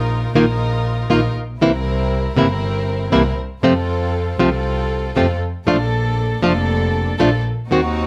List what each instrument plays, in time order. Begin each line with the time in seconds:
Already playing: double bass A#1, string section D#4 F4 A#4
0.34 double bass A#1, nylon-string guitar D#3 A#3 D#4 F4, string section D#4 F4 A#4
1.10 double bass A#1, nylon-string guitar D#3 A#3 D#4 F4, string section D#4 F4 A#4
1.37 double bass A#1
1.61 double bass C2, nylon-string guitar C3 E3 A#3 C4 E4, string section C4 E4 A#4
2.36 double bass G1, nylon-string guitar C3 E3 A#3 C4 E4, string section C4 E4 A#4
3.12 double bass C2, nylon-string guitar C3 E3 A#3 C4 E4, string section C4 E4 A#4
3.63 double bass F2, nylon-string guitar C3 F3 A3 C4 F4, string section C4 F4 A4
4.39 double bass C2, nylon-string guitar C3 F3 A3 C4 F4, string section C4 F4 A4
5.16 double bass F2, nylon-string guitar C3 F3 A3 C4 F4, string section C4 F4 A4
5.67 double bass A#1, nylon-string guitar F3 A3 D4 F4, string section A#3 D4 A4
6.42 double bass F1, nylon-string guitar F3 A3 D4 F4, string section A#3 D4 A4
7.18 double bass A#1, nylon-string guitar F3 A3 D4 F4, string section A#3 D4 A4
7.69 double bass D#2, nylon-string guitar D#3 A#3 C4 F#4, string section C4 D#4 F#4